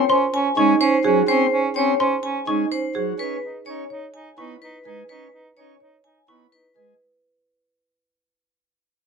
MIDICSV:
0, 0, Header, 1, 6, 480
1, 0, Start_track
1, 0, Tempo, 476190
1, 1292, Time_signature, 4, 2, 24, 8
1, 9132, End_track
2, 0, Start_track
2, 0, Title_t, "Xylophone"
2, 0, Program_c, 0, 13
2, 97, Note_on_c, 0, 84, 73
2, 406, Note_off_c, 0, 84, 0
2, 576, Note_on_c, 0, 85, 67
2, 885, Note_off_c, 0, 85, 0
2, 2017, Note_on_c, 0, 84, 71
2, 2326, Note_off_c, 0, 84, 0
2, 2494, Note_on_c, 0, 85, 64
2, 2805, Note_off_c, 0, 85, 0
2, 4414, Note_on_c, 0, 85, 57
2, 4724, Note_off_c, 0, 85, 0
2, 6334, Note_on_c, 0, 85, 55
2, 6645, Note_off_c, 0, 85, 0
2, 9132, End_track
3, 0, Start_track
3, 0, Title_t, "Vibraphone"
3, 0, Program_c, 1, 11
3, 0, Note_on_c, 1, 73, 63
3, 162, Note_off_c, 1, 73, 0
3, 339, Note_on_c, 1, 80, 69
3, 646, Note_off_c, 1, 80, 0
3, 813, Note_on_c, 1, 72, 82
3, 1124, Note_off_c, 1, 72, 0
3, 1295, Note_on_c, 1, 72, 85
3, 1605, Note_off_c, 1, 72, 0
3, 1774, Note_on_c, 1, 73, 62
3, 2085, Note_off_c, 1, 73, 0
3, 2248, Note_on_c, 1, 80, 61
3, 2563, Note_off_c, 1, 80, 0
3, 2738, Note_on_c, 1, 72, 86
3, 3046, Note_off_c, 1, 72, 0
3, 3219, Note_on_c, 1, 71, 87
3, 3526, Note_off_c, 1, 71, 0
3, 3689, Note_on_c, 1, 73, 59
3, 4003, Note_off_c, 1, 73, 0
3, 4170, Note_on_c, 1, 80, 58
3, 4483, Note_off_c, 1, 80, 0
3, 4654, Note_on_c, 1, 71, 71
3, 4965, Note_off_c, 1, 71, 0
3, 5134, Note_on_c, 1, 71, 74
3, 5444, Note_off_c, 1, 71, 0
3, 5611, Note_on_c, 1, 73, 52
3, 5924, Note_off_c, 1, 73, 0
3, 6089, Note_on_c, 1, 80, 52
3, 6403, Note_off_c, 1, 80, 0
3, 6576, Note_on_c, 1, 71, 65
3, 6885, Note_off_c, 1, 71, 0
3, 9132, End_track
4, 0, Start_track
4, 0, Title_t, "Marimba"
4, 0, Program_c, 2, 12
4, 91, Note_on_c, 2, 72, 65
4, 404, Note_off_c, 2, 72, 0
4, 574, Note_on_c, 2, 63, 72
4, 885, Note_off_c, 2, 63, 0
4, 1054, Note_on_c, 2, 68, 87
4, 1364, Note_off_c, 2, 68, 0
4, 2014, Note_on_c, 2, 72, 66
4, 2325, Note_off_c, 2, 72, 0
4, 2495, Note_on_c, 2, 63, 68
4, 2805, Note_off_c, 2, 63, 0
4, 2974, Note_on_c, 2, 68, 83
4, 3284, Note_off_c, 2, 68, 0
4, 3934, Note_on_c, 2, 73, 60
4, 4244, Note_off_c, 2, 73, 0
4, 4411, Note_on_c, 2, 64, 56
4, 4724, Note_off_c, 2, 64, 0
4, 4893, Note_on_c, 2, 71, 73
4, 5204, Note_off_c, 2, 71, 0
4, 5851, Note_on_c, 2, 73, 53
4, 6164, Note_off_c, 2, 73, 0
4, 6332, Note_on_c, 2, 64, 56
4, 6644, Note_off_c, 2, 64, 0
4, 6812, Note_on_c, 2, 71, 66
4, 7124, Note_off_c, 2, 71, 0
4, 9132, End_track
5, 0, Start_track
5, 0, Title_t, "Soprano saxophone"
5, 0, Program_c, 3, 64
5, 88, Note_on_c, 3, 61, 64
5, 258, Note_off_c, 3, 61, 0
5, 326, Note_on_c, 3, 61, 70
5, 496, Note_off_c, 3, 61, 0
5, 570, Note_on_c, 3, 61, 79
5, 739, Note_off_c, 3, 61, 0
5, 812, Note_on_c, 3, 61, 75
5, 980, Note_off_c, 3, 61, 0
5, 1047, Note_on_c, 3, 61, 75
5, 1217, Note_off_c, 3, 61, 0
5, 1289, Note_on_c, 3, 61, 76
5, 1458, Note_off_c, 3, 61, 0
5, 1526, Note_on_c, 3, 61, 68
5, 1696, Note_off_c, 3, 61, 0
5, 1770, Note_on_c, 3, 61, 74
5, 1939, Note_off_c, 3, 61, 0
5, 2003, Note_on_c, 3, 61, 64
5, 2174, Note_off_c, 3, 61, 0
5, 2249, Note_on_c, 3, 61, 54
5, 2418, Note_off_c, 3, 61, 0
5, 2488, Note_on_c, 3, 61, 47
5, 2657, Note_off_c, 3, 61, 0
5, 2734, Note_on_c, 3, 61, 36
5, 2901, Note_off_c, 3, 61, 0
5, 3216, Note_on_c, 3, 63, 36
5, 3382, Note_off_c, 3, 63, 0
5, 3457, Note_on_c, 3, 63, 41
5, 3623, Note_off_c, 3, 63, 0
5, 3697, Note_on_c, 3, 63, 55
5, 3863, Note_off_c, 3, 63, 0
5, 3933, Note_on_c, 3, 63, 59
5, 4100, Note_off_c, 3, 63, 0
5, 4169, Note_on_c, 3, 63, 60
5, 4338, Note_off_c, 3, 63, 0
5, 4412, Note_on_c, 3, 63, 65
5, 4580, Note_off_c, 3, 63, 0
5, 4651, Note_on_c, 3, 63, 70
5, 4819, Note_off_c, 3, 63, 0
5, 4882, Note_on_c, 3, 63, 65
5, 5053, Note_off_c, 3, 63, 0
5, 5126, Note_on_c, 3, 63, 66
5, 5296, Note_off_c, 3, 63, 0
5, 5366, Note_on_c, 3, 63, 58
5, 5536, Note_off_c, 3, 63, 0
5, 5616, Note_on_c, 3, 63, 60
5, 5783, Note_off_c, 3, 63, 0
5, 5855, Note_on_c, 3, 63, 51
5, 6022, Note_off_c, 3, 63, 0
5, 6086, Note_on_c, 3, 63, 42
5, 6256, Note_off_c, 3, 63, 0
5, 6331, Note_on_c, 3, 63, 40
5, 6499, Note_off_c, 3, 63, 0
5, 6568, Note_on_c, 3, 63, 31
5, 6737, Note_off_c, 3, 63, 0
5, 9132, End_track
6, 0, Start_track
6, 0, Title_t, "Pipe organ"
6, 0, Program_c, 4, 19
6, 577, Note_on_c, 4, 56, 71
6, 755, Note_off_c, 4, 56, 0
6, 1052, Note_on_c, 4, 54, 62
6, 1232, Note_off_c, 4, 54, 0
6, 1291, Note_on_c, 4, 60, 79
6, 1471, Note_off_c, 4, 60, 0
6, 1772, Note_on_c, 4, 60, 65
6, 1952, Note_off_c, 4, 60, 0
6, 2496, Note_on_c, 4, 56, 64
6, 2674, Note_off_c, 4, 56, 0
6, 2975, Note_on_c, 4, 54, 63
6, 3154, Note_off_c, 4, 54, 0
6, 3214, Note_on_c, 4, 61, 76
6, 3393, Note_off_c, 4, 61, 0
6, 3696, Note_on_c, 4, 61, 62
6, 3875, Note_off_c, 4, 61, 0
6, 4417, Note_on_c, 4, 59, 60
6, 4595, Note_off_c, 4, 59, 0
6, 4896, Note_on_c, 4, 56, 55
6, 5074, Note_off_c, 4, 56, 0
6, 5140, Note_on_c, 4, 61, 65
6, 5317, Note_off_c, 4, 61, 0
6, 5623, Note_on_c, 4, 61, 57
6, 5799, Note_off_c, 4, 61, 0
6, 6335, Note_on_c, 4, 59, 53
6, 6514, Note_off_c, 4, 59, 0
6, 6815, Note_on_c, 4, 56, 51
6, 6994, Note_off_c, 4, 56, 0
6, 9132, End_track
0, 0, End_of_file